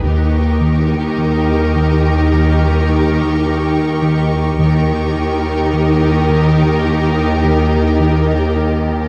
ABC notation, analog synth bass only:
X:1
M:4/4
L:1/8
Q:1/4=53
K:D#phr
V:1 name="Analog synth bass" clef=bass
D, D, D, D, D, D, D, D, | D, D, D, D, D, D, D, D, |]